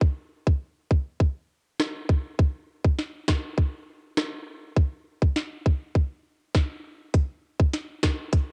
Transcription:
0.01 kick
0.47 kick
0.91 kick
1.20 kick
1.80 cross-stick, snare
2.09 kick
2.39 kick
2.84 kick
2.99 snare
3.28 kick, cross-stick, snare
3.58 kick
4.17 cross-stick, snare
4.77 kick
5.22 kick
5.36 snare
5.66 kick
5.95 kick
6.55 kick, snare
7.14 kick, closed hi-hat
7.60 kick
7.73 snare, closed hi-hat
8.03 kick, cross-stick, snare
8.33 kick, closed hi-hat

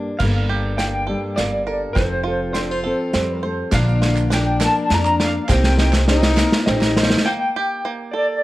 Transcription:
Already playing: G2 G3 A#3 D4 A4
0.18 G1 G2 G3 A#3 F5, kick, snare, crash
0.23 D4 A4
0.49 D4 G4
0.78 A#3 G5, snare, closed hi-hat
1.07 G3 D4 A4
1.36 G1 A#3 D5, snare, closed hi-hat
1.67 A4 A#4
1.93 F1 F3 C4 F4 C5, kick, snare, closed hi-hat
1.98 A4
2.24 F4 A4
2.54 C4 D4 C5, snare, closed hi-hat
2.71 F4
2.84 C4 A4
3.14 F2 G3 C4, snare, closed hi-hat
3.43 A3 C5
3.71 A#1 A#2 D3 F3 A#3 D4 A#4 F5, kick, snare, clap, closed hi-hat, shaker
3.89 shaker
4.02 F4, snare
4.16 clap, shaker
4.31 F3 A#3 D4 A#4 G5, snare, closed hi-hat
4.60 F3 A#3 D4 A#4 A5, snare, clap, shaker
4.76 shaker
4.90 F2 F3 A#3 D4 A#4, snare, closed hi-hat
4.94 A#5
5.05 clap, shaker
5.20 D5 F5, snare
5.47 C2 C3 G3 A#3 C4 D#4 A#4, kick, snare, clap, shaker
5.52 G5
5.64 snare
5.78 D#4, snare
5.92 snare, clap, shaker
6.07 G3 A#3 C4 D#4 A#4, snare
6.23 snare
6.37 A#3 D#4 A#4, snare, clap, shaker
6.52 snare
6.66 A1 G3 A#3 C4 D#4 D#5, snare, shaker
6.70 A#4
6.81 snare, clap, shaker
6.97 A#3 D#4 A#4 C5, snare, shaker
7.03 snare
7.10 snare, shaker
7.18 snare
7.26 A#3 G5
7.56 G4
7.85 A#3
8.12 A4 D5

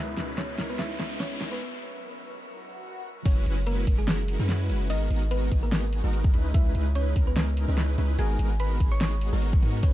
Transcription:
Already playing: C#2 G#3 B3 C#4 D#4 E4 B4 E5, riser
0.17 C#2 G#3 C#4 D#4 E4 B4, snare, closed hi-hat
0.38 C#4 C#5, snare, closed hi-hat
0.58 C#2 G#3 C#4 D#4 E4 A#4, snare, closed hi-hat
0.70 B3 B4
0.79 C#2 G#3 C#4 D#4 E4 B4 E5, snare, closed hi-hat
0.99 C#2 G#3 C#4 D#4 E4 B4, snare, closed hi-hat
1.20 C#4 C#5, snare, closed hi-hat
1.41 C#2 G#3 C#4 D#4 E4 A#4, snare, closed hi-hat
1.52 B3 B4
1.61 F#3 A#4
2.43 swell
3.25 F#1 G#3 C#4 E4 F#4 B4 C#5, kick, closed hi-hat, crash
3.46 F#1 G#3 C#4 E4 F#4 B4, closed hi-hat
3.67 A#3 A#4, closed hi-hat
3.87 F#1 E4 F#4, kick, closed hi-hat
3.98 G#3 G#4
4.08 snare, closed hi-hat
4.28 closed hi-hat
4.39 F#2 G#3 C#4 E4 F#4 B4
4.49 snare, closed hi-hat
4.69 F#1 G#3 C#4 E4 F#4 B4, closed hi-hat
4.90 G#1 G#3 B3 D#4 F#4 A#4 D#5, closed hi-hat
5.10 G#1 G#3 B3 D#4 F#4 A#4, closed hi-hat
5.31 B3 B4, closed hi-hat
5.52 G#1 G#3 B3 D#4 G#4, kick, closed hi-hat
5.63 A#3 A#4
5.72 snare, closed hi-hat
5.93 closed hi-hat
6.04 G#1 G#3 B3 D#4 F#4 A#4
6.13 closed hi-hat
6.24 kick
6.34 C#2 G#3 C#4 D#4 E4 B4, closed hi-hat
6.54 C#2 E4 E5, kick, closed hi-hat
6.75 C#2 G#3 C#4 D#4 E4 B4, closed hi-hat
6.95 C#4 C#5, closed hi-hat
7.16 C#2 G#3 C#4 D#4 E4 A#4, kick, closed hi-hat
7.27 B3 B4
7.36 snare, closed hi-hat
7.57 closed hi-hat
7.68 C#2 G#3 C#4 D#4 E4 B4
7.78 snare, closed hi-hat
7.98 C#2 G#3 C#4 D#4 E4 B4, closed hi-hat
8.19 G#1 G#3 B3 D#4 F#4 G#4 A#4 G#5, closed hi-hat
8.39 G#1 G#3 B3 D#4 F#4 A#4, closed hi-hat
8.60 B4 B5, closed hi-hat
8.80 G#1 G#3 B3 G#4, kick, closed hi-hat
8.92 C#5 C#6
9.01 snare, closed hi-hat
9.21 closed hi-hat
9.33 G#1 G#3 B3 D#4 F#4 A#4
9.42 closed hi-hat
9.53 kick
9.63 G#2 G#3 B3 D#4 F#4 A#4, closed hi-hat
9.83 F#1 G#3 C#4 E4 F#4 B4 C#5, kick, closed hi-hat

